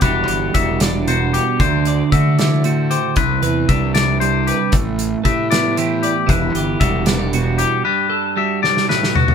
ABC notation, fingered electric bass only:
X:1
M:6/8
L:1/8
Q:3/8=77
K:Em
V:1 name="Fingered electric bass" clef=bass
E,,, G,,, E,,,4 | D,,2 D,4 | C,, E,, C,,4 | A,,,2 A,,4 |
E,,, G,,, E,,,4 | z6 |]